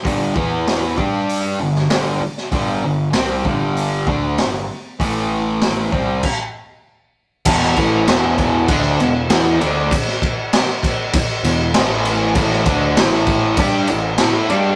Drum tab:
CC |----------------|----------------|--------x-------|x-x-x-x-x-x-x-x-|
HH |o---o---o---o---|o---o---o---o---|o---o-----------|----------------|
SD |----o------oo--o|----o-------o---|----o-----------|-o--o-------o---|
BD |o-o---o---------|o-----o---o-----|o-----o-o-------|o-o---o-o-------|

CC |x-x-x-x-x-x-x-x-|x-x-x-x-x-x-x-x-|
HH |----------------|----------------|
SD |-o--o-------o---|-o--o-------o---|
BD |o-o---o-o-------|o-o---o-o-------|